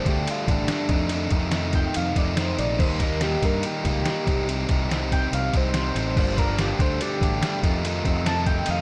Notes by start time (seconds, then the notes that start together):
0.06 D2 G3 A3 D4 G4, kick, ride
0.10 D3
0.28 F4, ride
0.48 A1 A3 D4, kick, ride
0.52 G3
0.68 D3 G3 A3, snare, ride
0.72 D4
0.89 F2 C3 D#3 A3 D#4, kick, ride
0.94 F2
1.09 F2 C3 D#3 A3, ride
1.14 D#4
1.30 F2 A3 D#4, kick, ride
1.35 D#3
1.51 F2 C3 D#3 A3, snare, ride
1.55 D#4
1.73 G5, kick, ride
1.94 F2 F5, ride
2.16 F2 D#3 A3 D#4 D5, kick, ride
2.37 C3 D#3 A3 D#4 C5, snare, ride
2.59 A#1 A3 D#4 D5, ride
2.63 D#3
2.79 D#2 D#3 G3 A#3 D#4 C5, kick, crash
2.99 D#4 A#4, kick, ride
3.03 G3 A#3
3.21 D#3 G3 A#3 G4, snare, ride
3.25 D#4
3.42 G2 A#4, kick, ride
3.63 G4, ride
3.85 C#2 A#3 D#4, kick, ride
3.89 G3
4.05 D#3 G3 A#3 D#4, snare, ride
4.26 C2 G3 C4 D#4, kick, ride
4.30 C3
4.49 C3 G3 C4 D#4, ride
4.69 C2 G3 C4 D#4, kick, ride
4.89 C3 G3 C4, snare, ride
4.93 D#4
5.12 G5, kick, ride
5.33 C2 F5, ride
5.53 C2 G3 C4 D#4 C5, kick, ride
5.74 C3 G3 C4 C5, snare, ride
5.79 D#4
5.95 A1 C4 D#4 C5, ride
6.00 G3
6.16 G1 G2 D3 G3 A#3 D4 C5, kick, crash
6.36 G3 A#3 D4 A#4, kick, ride
6.58 G2 D3 F3 G3 A#3 D4 G4, snare, ride
6.79 D2 D3 G3 A3 D4 C5, kick, ride
7.01 D4 G4, ride
7.21 A1 D3 A3 D4, kick, ride
7.26 G3
7.42 D3 G3 A3, snare, ride
7.46 D4
7.63 F2 C3 D#3 F3 A3 D#4, kick, ride
7.83 F2 C3 D#3 F3 A3 D#4, ride
8.03 F2 A3 C4 D#4, kick, ride
8.07 D#3
8.25 F2 C3 D#3 F3 A3 A5, snare, ride
8.29 D#4
8.46 C4 G5, kick, ride
8.66 F2 D#4, ride
8.70 F5